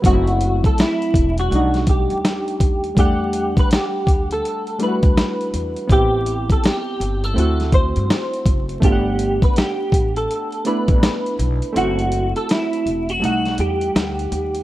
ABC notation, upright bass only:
X:1
M:4/4
L:1/16
Q:"Swing 16ths" 1/4=82
K:Em
V:1 name="Upright bass" clef=bass
F,,,3 z3 E,,,2 B,,,3 ^D,, z2 D,,2 | E,,3 z3 D,,2 z3 D,, z2 E,, z | A,,,3 z3 G,,,2 D,,3 G,, z2 F,,,2 | G,,,3 z3 A,,,2 z3 A,,, z2 B,,, z |
F,,,3 z3 E,,,2 B,,,2 E,,2 D,,2 ^D,,2 |]